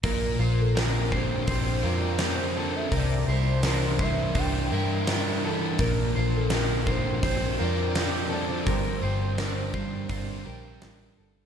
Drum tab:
HH |o-o-o-o-|o-o-o-o-|o-o-o-o-|o-o-o-o-|
SD |--o---o-|--o---o-|--o---o-|--o---o-|
BD |o--oo---|o--oo---|o--oo---|o--oo---|